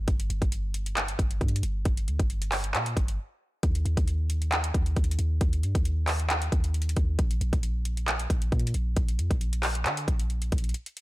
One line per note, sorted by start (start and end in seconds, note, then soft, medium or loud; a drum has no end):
0.08 0.29 G1 loud
0.08 kick loud
0.08 closed hi-hat medium
0.20 closed hi-hat medium
0.30 0.41 G1 loud
0.30 closed hi-hat medium
0.42 1.16 G1 loud
0.42 kick loud
0.42 closed hi-hat medium
0.52 closed hi-hat medium
0.74 closed hi-hat medium
0.86 closed hi-hat medium
0.97 clap loud
0.97 closed hi-hat medium
1.08 closed hi-hat medium
1.19 1.40 G1 loud
1.19 kick loud
1.19 closed hi-hat medium
1.31 closed hi-hat medium
1.41 1.62 G2 loud
1.41 kick medium
1.41 closed hi-hat soft
1.48 closed hi-hat medium
1.56 closed hi-hat medium
1.63 1.85 G1 loud
1.63 closed hi-hat medium
1.85 2.09 G1 loud
1.85 kick loud
1.85 closed hi-hat medium
1.97 closed hi-hat medium
2.08 2.19 D2 loud
2.08 closed hi-hat medium
2.19 2.76 G1 loud
2.19 kick loud
2.19 closed hi-hat medium
2.30 closed hi-hat medium
2.42 closed hi-hat medium
2.52 clap medium
2.52 open hi-hat medium
2.64 closed hi-hat medium
2.74 2.95 A#2 loud
2.74 clap loud
2.74 closed hi-hat medium
2.86 closed hi-hat medium
2.97 3.18 G1 loud
2.97 kick loud
2.97 closed hi-hat medium
3.08 closed hi-hat medium
3.63 3.85 D#2 loud
3.63 kick loud
3.63 closed hi-hat medium
3.75 closed hi-hat medium
3.85 3.97 D#2 loud
3.85 closed hi-hat medium
3.97 4.71 D#2 loud
3.97 kick loud
3.97 closed hi-hat medium
4.08 closed hi-hat medium
4.30 closed hi-hat medium
4.42 closed hi-hat medium
4.52 clap loud
4.52 closed hi-hat medium
4.64 closed hi-hat medium
4.74 4.96 D#2 loud
4.74 kick loud
4.74 closed hi-hat medium
4.86 closed hi-hat medium
4.97 5.18 D#2 loud
4.97 kick medium
4.97 closed hi-hat soft
5.04 closed hi-hat medium
5.11 closed hi-hat medium
5.19 5.40 D#2 loud
5.19 closed hi-hat medium
5.41 5.65 D#2 loud
5.41 kick loud
5.41 closed hi-hat medium
5.53 closed hi-hat medium
5.63 5.74 G2 loud
5.63 closed hi-hat medium
5.75 6.49 D#2 loud
5.75 kick loud
5.75 closed hi-hat medium
5.85 closed hi-hat medium
6.07 clap medium
6.07 open hi-hat medium
6.19 closed hi-hat medium
6.30 clap loud
6.30 closed hi-hat medium
6.42 closed hi-hat medium
6.52 6.95 D#2 loud
6.52 kick loud
6.52 closed hi-hat medium
6.64 closed hi-hat medium
6.74 closed hi-hat soft
6.82 closed hi-hat medium
6.89 closed hi-hat medium
6.96 7.18 D#2 loud
6.96 kick medium
6.96 closed hi-hat medium
7.19 7.40 A#1 loud
7.19 kick loud
7.19 closed hi-hat medium
7.31 closed hi-hat medium
7.41 7.52 A#1 loud
7.41 closed hi-hat medium
7.53 8.27 A#1 loud
7.53 kick loud
7.53 closed hi-hat medium
7.63 closed hi-hat medium
7.85 closed hi-hat medium
7.97 closed hi-hat medium
8.08 clap loud
8.08 closed hi-hat medium
8.19 closed hi-hat medium
8.30 8.51 A#1 loud
8.30 kick loud
8.30 closed hi-hat medium
8.42 closed hi-hat medium
8.52 8.73 A#2 loud
8.52 kick medium
8.52 closed hi-hat soft
8.60 closed hi-hat medium
8.67 closed hi-hat medium
8.74 8.96 A#1 loud
8.74 closed hi-hat medium
8.96 9.20 A#1 loud
8.96 kick loud
8.96 closed hi-hat medium
9.08 closed hi-hat medium
9.19 9.30 F2 loud
9.19 closed hi-hat medium
9.31 9.87 A#1 loud
9.31 kick loud
9.31 closed hi-hat medium
9.41 closed hi-hat medium
9.53 closed hi-hat medium
9.63 clap medium
9.63 open hi-hat medium
9.75 closed hi-hat medium
9.85 10.07 D3 loud
9.85 clap loud
9.85 closed hi-hat medium
9.97 closed hi-hat medium
10.08 10.50 A#1 loud
10.08 kick loud
10.08 closed hi-hat medium
10.19 closed hi-hat medium
10.30 closed hi-hat soft
10.42 closed hi-hat medium
10.52 10.73 A#1 loud
10.52 kick medium
10.52 closed hi-hat medium
10.58 closed hi-hat medium
10.64 closed hi-hat soft
10.69 closed hi-hat soft
10.74 closed hi-hat medium
10.86 closed hi-hat medium
10.97 closed hi-hat medium